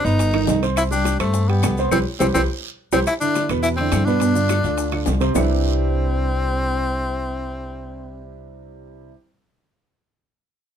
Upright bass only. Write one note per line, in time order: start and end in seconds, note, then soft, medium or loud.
0.05 0.45 G1 medium
0.48 1.14 C2 medium
1.20 1.60 G2 medium
1.63 1.90 C2 medium
1.91 2.02 C2 medium
2.20 2.31 C2 loud
2.35 2.46 C2 medium
2.92 3.03 C2 medium
3.49 3.89 E2 medium
3.92 4.58 G2 medium
4.64 5.04 D2 medium
5.07 5.32 C2 medium
5.35 9.11 C2 medium